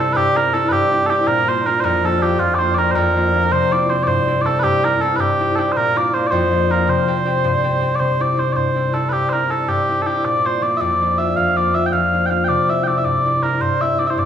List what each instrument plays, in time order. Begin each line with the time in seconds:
Already playing: harp G2 A#3 C4 D4 G4
0.00 harp E4, bagpipes A4
0.13 harp G2, bagpipes G4 B4
0.35 harp C4 D4 E4, bagpipes A#4
0.53 harp C4 D4 E4, bagpipes A4
0.69 harp G2, bagpipes G4 B4
0.91 harp C4 D4 E4
1.06 harp C4 D4 E4, bagpipes G4 A4
1.27 harp A#2, bagpipes A#4
1.46 harp A#3 D4 F4, bagpipes C5
1.66 harp A#3 D4 F4, bagpipes A#4
1.80 harp F2, bagpipes C5
1.84 bagpipes A#4
2.04 harp A#3 D4 F4, bagpipes A4
2.21 harp A#3 D4 F4, bagpipes G4
2.39 harp F2, bagpipes F4
2.55 bagpipes C5 D5
2.60 harp A#3 D4 F4
2.75 harp A#3 D4 F4, bagpipes A#4 D5
2.91 bagpipes A#4 C5
2.95 harp F2
3.16 harp A#3 D4 F4
3.33 harp A#3 D4 F4
3.51 harp C3, bagpipes C5
3.72 harp C4 D4 E4, bagpipes D5
3.89 harp C4 D4 E4, bagpipes C5
4.03 harp G2, bagpipes D5
4.08 bagpipes C5
4.27 harp C4 D4 E4
4.42 harp C4 D4, bagpipes D5
4.46 harp E4, bagpipes A4
4.59 bagpipes G4 B4
4.64 harp G2
4.84 harp C4 D4 E4, bagpipes A#4
5.01 harp C4 D4 E4, bagpipes A4
5.16 harp G2, bagpipes B4
5.20 bagpipes G4
5.39 harp C4 D4 E4
5.55 harp C4 D4 E4, bagpipes G4 A4
5.72 harp A#2, bagpipes C5
5.77 bagpipes A#4
5.95 harp A#3 D4 F4, bagpipes D5
6.13 harp A#3 D4 F4, bagpipes C5
6.27 bagpipes C5 D5
6.32 harp F2
6.52 harp A#3 D4 F4
6.70 harp A#3 D4 F4, bagpipes A#4
6.87 harp C3, bagpipes C5
7.07 harp C4 D4 G4
7.25 harp C4 D4 G4
7.44 harp G2
7.63 harp C4 D4 G4
7.81 harp C4 D4 G4
7.95 bagpipes D5
8.00 harp C3, bagpipes C5
8.19 harp C4 D4 E4, bagpipes D5
8.36 harp C4 D4 E4, bagpipes C5
8.53 harp G2, bagpipes C5 D5
8.75 harp C4 D4 E4
8.92 harp C4 D4 E4, bagpipes A4
9.09 harp G2, bagpipes G4 B4
9.29 harp C4 D4 E4, bagpipes A#4 C5
9.49 harp C4 D4 E4, bagpipes A4
9.68 harp G2, bagpipes G4
9.88 harp C4 D4 E4
10.02 harp C4, bagpipes A4
10.06 harp D4 E4, bagpipes G4
10.25 harp A#2, bagpipes D5
10.44 harp A#3 D4 F4, bagpipes C5
10.62 harp A#3 D4 F4, bagpipes D5
10.77 harp F2, bagpipes D5 E5
11.01 harp A#3 D4 F4
11.18 harp A#3 D4 F4, bagpipes E5
11.36 harp F2, bagpipes F5
11.56 harp A#3 D4 F4, bagpipes D5
11.74 harp A#3 D4 F4, bagpipes E5
11.86 bagpipes G5
11.93 harp F2, bagpipes F5
12.13 harp A#3 D4 F4
12.26 harp A#3, bagpipes G5
12.30 harp D4 F4, bagpipes F5
12.44 harp C3, bagpipes D5 G5
12.68 harp C4 D4 E4, bagpipes E5
12.84 harp C4 D4, bagpipes D5 G5
12.88 harp E4
12.98 bagpipes E5
13.04 harp G2, bagpipes D5
13.25 harp C4 D4 E4
13.42 harp C4 D4 E4, bagpipes A#4
13.61 harp G2, bagpipes C5
13.81 harp C4 D4 E4, bagpipes E5
13.99 harp C4 D4 E4, bagpipes D5
14.07 bagpipes C5 E5
14.18 harp G2, bagpipes D5